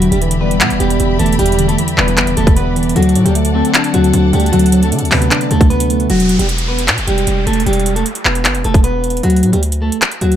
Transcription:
Already playing: 808-style bass E1, synth keys E2, clean electric guitar F#3, string section G4 D5 E5 B5
0.02 synth keys D3, closed hi-hat
0.11 808-style bass E1, clean electric guitar G3 G4, closed hi-hat
0.22 synth keys E3, closed hi-hat
0.31 closed hi-hat
0.41 synth keys G3, clean electric guitar B3 B4
0.51 closed hi-hat
0.61 808-style bass B2, synth keys B3, clap, closed hi-hat
0.70 808-style bass E1, closed hi-hat
0.80 808-style bass E1, synth keys E2, clean electric guitar G3 G4, closed hi-hat
0.90 closed hi-hat
1.00 808-style bass E1, closed hi-hat
1.19 808-style bass E1, synth keys E3, clean electric guitar A3 A4, closed hi-hat
1.26 closed hi-hat
1.32 closed hi-hat
1.39 808-style bass E1, synth keys E2, clean electric guitar G3 G4, closed hi-hat
1.46 closed hi-hat
1.52 closed hi-hat
1.59 synth keys D3, closed hi-hat
1.68 clean electric guitar A3 A4, closed hi-hat
1.78 synth keys E3, closed hi-hat
1.88 closed hi-hat
1.98 808-style bass E1, synth keys G3, clean electric guitar B3 B4, clap
2.08 closed hi-hat
2.17 808-style bass G1, synth keys B3, clap, closed hi-hat
2.27 808-style bass E1, closed hi-hat
2.37 808-style bass E1, synth keys E2, clean electric guitar A3 A4, closed hi-hat
2.47 kick, closed hi-hat
2.56 clean electric guitar B3 B4, closed hi-hat
2.76 synth keys E3, closed hi-hat
2.83 closed hi-hat
2.89 closed hi-hat
2.96 808-style bass D2, synth keys D3, clean electric guitar F#3 F#4, string section A4 F#5 A5, closed hi-hat
3.02 closed hi-hat
3.09 closed hi-hat
3.15 808-style bass A2, synth keys F#3, closed hi-hat
3.25 808-style bass D2, clean electric guitar G3 G4, closed hi-hat
3.35 synth keys A3, closed hi-hat
3.45 closed hi-hat
3.54 clean electric guitar A3 A4, synth keys C4
3.65 closed hi-hat
3.74 synth keys D4, clap, closed hi-hat
3.84 closed hi-hat
3.94 808-style bass D2, synth keys D3, clean electric guitar F#3 F#4, closed hi-hat
4.04 closed hi-hat
4.13 808-style bass D2, closed hi-hat
4.33 808-style bass D2, clean electric guitar G3 G4, synth keys A3, closed hi-hat
4.40 closed hi-hat
4.46 closed hi-hat
4.52 808-style bass D2, synth keys D3, clean electric guitar F#3 F#4, closed hi-hat
4.59 closed hi-hat
4.66 closed hi-hat
4.72 synth keys F#3, closed hi-hat
4.82 clean electric guitar A3 A4, closed hi-hat
4.92 808-style bass D3, synth keys A3, closed hi-hat
4.99 808-style bass D2, closed hi-hat
5.05 closed hi-hat
5.11 808-style bass D2, synth keys C3, clean electric guitar B3 B4, clap, open hi-hat
5.22 closed hi-hat
5.31 synth keys D4, clap, closed hi-hat
5.41 closed hi-hat
5.51 808-style bass D2, synth keys D3, clean electric guitar A3 A4, closed hi-hat
5.61 kick, closed hi-hat
5.70 clean electric guitar B3 B4, closed hi-hat
5.80 closed hi-hat
5.90 synth keys A3, closed hi-hat
6.00 closed hi-hat
6.10 808-style bass E1, clean electric guitar F#3 F#4, closed hi-hat, downlifter
6.20 closed hi-hat
6.29 closed hi-hat
6.39 808-style bass E1, clean electric guitar G3 G4, closed hi-hat
6.49 closed hi-hat
6.58 closed hi-hat
6.68 clean electric guitar B3 B4
6.79 closed hi-hat
6.88 808-style bass B2, clap, closed hi-hat
6.98 808-style bass E1, closed hi-hat
7.07 808-style bass E1, clean electric guitar G3 G4, closed hi-hat
7.18 closed hi-hat
7.27 808-style bass E1, closed hi-hat
7.47 808-style bass E1, clean electric guitar A3 A4, closed hi-hat
7.53 closed hi-hat
7.60 closed hi-hat
7.66 808-style bass E1, clean electric guitar G3 G4, closed hi-hat
7.73 closed hi-hat
7.80 closed hi-hat
7.86 closed hi-hat
7.96 clean electric guitar A3 A4, closed hi-hat
8.06 closed hi-hat
8.15 closed hi-hat
8.25 808-style bass E1, clean electric guitar B3 B4, clap
8.35 closed hi-hat
8.45 808-style bass G1, clap, closed hi-hat
8.55 808-style bass E1, closed hi-hat
8.64 808-style bass E1, clean electric guitar A3 A4, closed hi-hat
8.74 kick, closed hi-hat
8.84 clean electric guitar B3 B4, closed hi-hat
9.04 closed hi-hat
9.10 closed hi-hat
9.17 closed hi-hat
9.23 808-style bass D2, clean electric guitar F#3 F#4, closed hi-hat
9.30 closed hi-hat
9.36 closed hi-hat
9.43 808-style bass A2, closed hi-hat
9.53 808-style bass D2, clean electric guitar G3 G4, closed hi-hat
9.63 closed hi-hat
9.72 closed hi-hat
9.82 clean electric guitar A3 A4
9.92 closed hi-hat
10.02 clap, closed hi-hat
10.12 closed hi-hat
10.21 808-style bass D2, clean electric guitar F#3 F#4, closed hi-hat
10.32 closed hi-hat

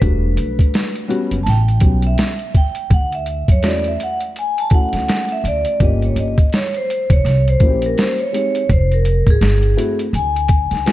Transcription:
Already playing: vibraphone B4
0.01 upright bass E1, grand piano G3 A3 D4 F#4, kick, closed hi-hat
0.37 upright bass B1, closed hi-hat
0.59 kick, closed hi-hat
0.74 snare, closed hi-hat
0.95 closed hi-hat
1.08 grand piano G3 B3 C#4 F#4, closed hi-hat
1.31 upright bass F#1, closed hi-hat
1.43 upright bass A1, vibraphone A5, closed hi-hat
1.47 vibraphone G5, snare
1.68 closed hi-hat
1.80 upright bass B1, grand piano G3 B3 C#4 F#4, kick, closed hi-hat
2.02 closed hi-hat
2.07 vibraphone E5
2.18 snare, closed hi-hat
2.39 closed hi-hat
2.55 vibraphone G5, kick, closed hi-hat
2.75 closed hi-hat
2.90 upright bass D2, vibraphone F#5, kick, closed hi-hat
3.12 vibraphone E5, closed hi-hat
3.26 closed hi-hat
3.48 upright bass F#2, vibraphone C#5, kick, closed hi-hat
3.63 upright bass E2, grand piano A3 C#4 E4 F#4, vibraphone D5, snare, closed hi-hat
3.84 vibraphone E5, closed hi-hat
4.00 vibraphone F#5, closed hi-hat
4.21 closed hi-hat
4.36 vibraphone G#5, closed hi-hat
4.58 vibraphone A5, closed hi-hat
4.70 grand piano A3 C#4 E4 F#4, kick, closed hi-hat
4.74 vibraphone F#5
4.93 upright bass D2, snare, closed hi-hat
5.08 snare, closed hi-hat
5.28 vibraphone E5, closed hi-hat
5.44 upright bass D2, vibraphone D5, closed hi-hat
5.65 closed hi-hat
5.80 upright bass G1, grand piano A#3 C#4 F4 G4, kick, closed hi-hat
5.84 vibraphone D#5
6.02 vibraphone C#5, closed hi-hat
6.16 upright bass G1, vibraphone D#5, closed hi-hat
6.38 kick, closed hi-hat
6.53 vibraphone C#5, snare, closed hi-hat
6.74 vibraphone C5, closed hi-hat
6.90 closed hi-hat
7.10 upright bass F1, vibraphone C#5, kick, closed hi-hat
7.25 upright bass C2, snare, closed hi-hat
7.48 vibraphone C5, closed hi-hat
7.60 upright bass A#1, grand piano A#3 C#4 E4 F#4, kick, closed hi-hat
7.68 grand piano G4
7.82 closed hi-hat
7.86 vibraphone A#4
7.98 vibraphone C5, snare, closed hi-hat
8.18 vibraphone C#5, closed hi-hat
8.33 grand piano G#3 C4 D#4 G4, vibraphone C#5, closed hi-hat
8.55 closed hi-hat
8.69 upright bass F1, vibraphone C5, kick, closed hi-hat
8.92 vibraphone A#4, closed hi-hat
9.05 closed hi-hat
9.27 upright bass G#1, vibraphone G#4, kick, closed hi-hat
9.41 upright bass G1, snare, closed hi-hat
9.63 closed hi-hat
9.77 grand piano A3 C4 E4 F#4, closed hi-hat
9.99 closed hi-hat
10.13 upright bass D2, vibraphone G#5, closed hi-hat
10.36 closed hi-hat
10.48 kick, closed hi-hat
10.71 upright bass D2, snare, closed hi-hat
10.86 grand piano A3 C4 E4 F#4, snare, closed hi-hat

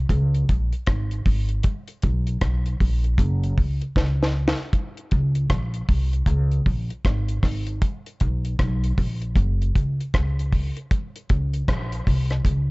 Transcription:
0.09 upright bass C#2, kick, closed hi-hat
0.35 closed hi-hat
0.49 upright bass A#1, kick, closed hi-hat
0.73 closed hi-hat
0.87 upright bass G#1, kick, cross-stick, closed hi-hat
1.11 closed hi-hat
1.26 upright bass G#1, kick, open hi-hat
1.49 closed hi-hat
1.63 kick, closed hi-hat
1.88 closed hi-hat
2.02 upright bass B1, kick, closed hi-hat
2.27 closed hi-hat
2.41 upright bass B1, kick, cross-stick, closed hi-hat
2.66 closed hi-hat
2.80 upright bass A#1, kick, open hi-hat
3.04 closed hi-hat
3.18 upright bass F#1, kick, closed hi-hat
3.44 closed hi-hat
3.58 upright bass C#2, kick, open hi-hat
3.81 closed hi-hat
3.96 upright bass C#2, kick, snare
4.23 snare
4.48 snare
4.73 kick, closed hi-hat
4.97 closed hi-hat
5.11 upright bass C#2, kick, closed hi-hat
5.35 closed hi-hat
5.50 upright bass A#1, kick, cross-stick, closed hi-hat
5.74 closed hi-hat
5.89 upright bass C2, kick, open hi-hat
6.13 closed hi-hat
6.26 upright bass C#2, kick, closed hi-hat
6.51 closed hi-hat
6.66 upright bass A#1, kick, open hi-hat
6.90 closed hi-hat
7.05 upright bass G#1, kick, cross-stick, closed hi-hat
7.29 closed hi-hat
7.43 upright bass G#1, kick, cross-stick, open hi-hat
7.67 closed hi-hat
7.82 kick, closed hi-hat
8.06 closed hi-hat
8.20 upright bass B1, kick, closed hi-hat
8.45 closed hi-hat
8.59 upright bass B1, kick, cross-stick, closed hi-hat
8.84 closed hi-hat
8.98 upright bass A#1, kick, open hi-hat
9.22 closed hi-hat
9.36 upright bass F#1, kick, closed hi-hat
9.62 closed hi-hat
9.75 upright bass C#2, kick, closed hi-hat
10.01 closed hi-hat
10.14 upright bass C#2, kick, cross-stick, closed hi-hat
10.39 closed hi-hat
10.53 kick, open hi-hat
10.77 closed hi-hat
10.91 kick, closed hi-hat
11.16 closed hi-hat
11.29 upright bass C#2, kick, closed hi-hat
11.54 closed hi-hat
11.68 upright bass A#1, kick, cross-stick, closed hi-hat
11.92 closed hi-hat
12.07 upright bass C2, kick, open hi-hat
12.30 cross-stick, closed hi-hat
12.45 upright bass C#2, kick, closed hi-hat

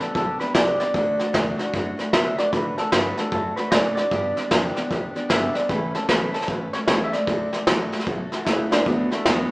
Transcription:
0.00 steel-string acoustic guitar G3 B3 D4 G4, clean electric guitar A4, muted upright bass stroke, snare
0.15 upright bass B1, steel-string acoustic guitar G3 B3 D4 G4, clean electric guitar A4, kick, snare
0.39 steel-string acoustic guitar G3 B3 D4 G4, clean electric guitar B4, muted upright bass stroke, snare
0.54 upright bass C#2, steel-string acoustic guitar G2 D3 G3 B3 D4 G4, clean electric guitar D5, kick, snare, hi-hat pedal
0.79 steel-string acoustic guitar G3 B3 D4 G4, clean electric guitar D5, muted upright bass stroke, snare
0.94 upright bass D2, steel-string acoustic guitar D3 F#3 A3 D4 F#4, kick, snare
1.19 steel-string acoustic guitar A3 D4 F#4, muted upright bass stroke, snare
1.33 upright bass E2, steel-string acoustic guitar D3 F#3 A3 D4 F#4, kick, snare, hi-hat pedal
1.57 steel-string acoustic guitar A3 D4 F#4, muted upright bass stroke, snare
1.72 upright bass F#2, steel-string acoustic guitar F#3 A3 D4 F#4, kick, snare
1.97 steel-string acoustic guitar A3 D4 F#4, muted upright bass stroke, snare
2.13 upright bass B2, steel-string acoustic guitar D3 F#3 A3 D4 F#4, clean electric guitar E5, kick, snare, hi-hat pedal
2.38 steel-string acoustic guitar A3 D4 F#4, clean electric guitar D5, muted upright bass stroke, snare
2.52 upright bass A2, steel-string acoustic guitar D3 F#3 A3 D4 F#4, clean electric guitar B4, kick, snare
2.77 steel-string acoustic guitar A3 D4 F#4, clean electric guitar A4, muted upright bass stroke, snare
2.92 upright bass G2, steel-string acoustic guitar D3 F#3 A3 D4 F#4, clean electric guitar B4, kick, snare, hi-hat pedal
3.17 steel-string acoustic guitar A3 D4 F#4, clean electric guitar A4, muted upright bass stroke, snare
3.32 upright bass F#2, steel-string acoustic guitar F#3 A3 D4 F#4, clean electric guitar A4, kick, snare
3.56 steel-string acoustic guitar A3 D4 F#4, clean electric guitar B4, muted upright bass stroke, snare
3.71 upright bass A2, steel-string acoustic guitar D3 F#3 A3 D4 F#4, clean electric guitar D5, kick, snare, hi-hat pedal
3.95 steel-string acoustic guitar D4 F#4, clean electric guitar D5, muted upright bass stroke, snare
4.00 steel-string acoustic guitar A3
4.11 upright bass G2, steel-string acoustic guitar G2 D3 G3 B3 D4 G4, kick, snare
4.36 steel-string acoustic guitar G3 B3 D4 G4, muted upright bass stroke, snare
4.51 upright bass E2, steel-string acoustic guitar G2 D3 G3 B3 D4 G4, kick, snare, hi-hat pedal
4.75 steel-string acoustic guitar G3 B3 D4 G4, muted upright bass stroke, snare
4.90 upright bass D2, steel-string acoustic guitar G3 B3 D4 G4, kick, snare
5.15 steel-string acoustic guitar G3 B3 D4 G4, muted upright bass stroke, snare
5.29 upright bass G1, steel-string acoustic guitar G2 D3 G3 B3 D4 G4, clean electric guitar E5, kick, snare, hi-hat pedal
5.54 steel-string acoustic guitar G3 B3 D4 G4, clean electric guitar D5, muted upright bass stroke, snare
5.69 upright bass A1, steel-string acoustic guitar A2 E3 G3 A3 C#4 A4, clean electric guitar B4, kick, snare
5.95 steel-string acoustic guitar G3 A3 C#4 A4, clean electric guitar A4, muted upright bass stroke, snare
6.08 upright bass B1, steel-string acoustic guitar A2 E3 G3 A3 C#4 A4, clean electric guitar B4, kick, snare, hi-hat pedal
6.34 steel-string acoustic guitar G3 A3 C#4 A4, clean electric guitar A4, muted upright bass stroke, snare
6.41 snare
6.48 upright bass A1, steel-string acoustic guitar G3 A3 C#4 A4, clean electric guitar B4, kick, snare
6.73 steel-string acoustic guitar G3 A3 C#4 A4, clean electric guitar C#5, muted upright bass stroke, snare
6.88 upright bass C#2, steel-string acoustic guitar A2 E3 G3 A3 C#4 A4, clean electric guitar C#5, kick, snare, hi-hat pedal
7.04 clean electric guitar E5
7.13 steel-string acoustic guitar G3 A3 C#4 A4, clean electric guitar D5, muted upright bass stroke, snare
7.27 upright bass D2, steel-string acoustic guitar D3 F#3 A3 F#4 A4, kick, snare
7.53 steel-string acoustic guitar A3 F#4 A4, muted upright bass stroke, snare
7.67 upright bass A1, steel-string acoustic guitar D3 F#3 A3 F#4 A4, kick, snare, hi-hat pedal
7.92 steel-string acoustic guitar A3 F#4 A4, muted upright bass stroke, snare
8.00 snare
8.06 upright bass B1, steel-string acoustic guitar F#3 A3 F#4 A4, kick, snare
8.32 steel-string acoustic guitar A3 F#4 A4, muted upright bass stroke, snare
8.45 upright bass C#2, steel-string acoustic guitar D3 F#3 A3 F#4 A4, clean electric guitar E4, kick, snare, hi-hat pedal
8.71 steel-string acoustic guitar A3 F#4 A4, clean electric guitar D4, muted upright bass stroke, snare
8.86 upright bass D2, steel-string acoustic guitar D3 F#3 A3 D4 F#4, clean electric guitar B3, kick, snare
9.11 clean electric guitar A3, steel-string acoustic guitar A3 D4 F#4, muted upright bass stroke, snare
9.25 upright bass E2, steel-string acoustic guitar D3 F#3 A3 D4 F#4, clean electric guitar B3, kick, snare, hi-hat pedal

